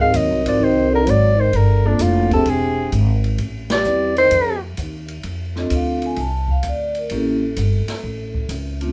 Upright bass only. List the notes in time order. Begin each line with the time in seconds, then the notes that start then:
Already playing: G#2
0.14 D#2
0.30 C2
0.45 G#1
0.60 C2
1.07 G#1
1.53 G1
2.00 F1
2.46 E1
2.93 G#1
3.39 A1
3.86 E2
4.31 F2
4.78 D#2
5.24 F2
5.71 D2
6.17 C2
6.64 D2
7.11 A1
7.57 G1
7.88 muted upright bass stroke
8.03 A1
8.49 C#2